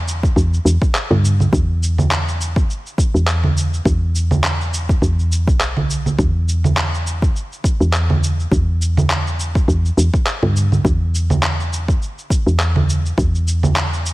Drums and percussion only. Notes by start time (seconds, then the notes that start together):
0.08 cabasa
0.23 kick, cabasa
0.36 kick, cabasa
0.54 cabasa
0.66 cabasa
0.82 kick, cabasa
0.95 clap, cabasa
1.11 low conga
1.25 cabasa
1.40 low conga, cabasa
1.53 kick, cabasa
1.83 cabasa
1.98 low conga, cabasa
2.11 clap, cabasa
2.28 cabasa
2.41 cabasa
2.56 kick, cabasa
2.70 cabasa
2.86 cabasa
2.98 kick, cabasa
3.16 cabasa
3.27 clap, cabasa
3.44 low conga
3.57 cabasa
3.74 cabasa
3.85 kick, cabasa
4.15 cabasa
4.31 low conga, cabasa
4.44 clap, cabasa
4.61 cabasa
4.74 cabasa
4.89 kick, cabasa
5.02 kick, cabasa
5.19 cabasa
5.32 cabasa
5.47 kick, cabasa
5.60 clap, cabasa
5.77 low conga
5.90 cabasa
6.06 low conga, cabasa
6.19 kick, cabasa
6.49 cabasa
6.64 low conga, cabasa
6.77 clap, cabasa
6.94 cabasa
7.07 cabasa
7.22 kick, cabasa
7.36 cabasa
7.52 cabasa
7.64 kick, cabasa
7.81 cabasa
7.93 clap, cabasa
8.10 low conga
8.23 cabasa
8.40 cabasa
8.52 kick, cabasa
8.82 cabasa
8.97 low conga, cabasa
9.10 clap, cabasa
9.27 cabasa
9.40 cabasa
9.55 kick, cabasa
9.68 kick, cabasa
9.85 cabasa
9.98 cabasa
10.14 kick, cabasa
10.26 clap, cabasa
10.43 low conga
10.56 cabasa
10.72 low conga, cabasa
10.85 kick, cabasa
11.15 cabasa
11.30 low conga, cabasa
11.43 clap, cabasa
11.60 cabasa
11.73 cabasa
11.88 kick, cabasa
12.02 cabasa
12.19 cabasa
12.30 kick, cabasa
12.48 cabasa
12.60 clap, cabasa
12.76 low conga
12.89 cabasa
13.06 cabasa
13.18 kick, cabasa
13.35 cabasa
13.48 cabasa
13.63 low conga, cabasa
13.76 clap, cabasa
13.93 cabasa
14.06 cabasa